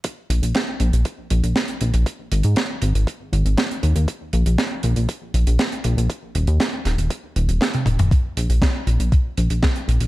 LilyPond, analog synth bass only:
\new Staff \with { instrumentName = "Analog synth bass" } { \clef bass \time 4/4 \key aes \mixolydian \tempo 4 = 119 r8 bes,,16 bes,,16 r8 bes,,16 bes,,16 r8 bes,,16 bes,,16 r8 bes,,16 bes,,16 | r8 aes,,16 aes,16 r8 aes,,16 aes,,16 r8 aes,,16 aes,,16 r8 ees,16 ees,16 | r8 bes,,16 bes,,16 r8 bes,,16 bes,,16 r8 bes,,16 bes,,16 r8 bes,,16 bes,,16 | r8 ees,,16 ees,16 r8 ees,,16 ees,,16 r8 ees,,16 ees,,16 r8 ees,,16 ees,,16 |
r8 bes,,16 bes,,16 r8 bes,,16 bes,,16 r8 bes,,16 bes,,16 r8 bes,,16 bes,,16 | }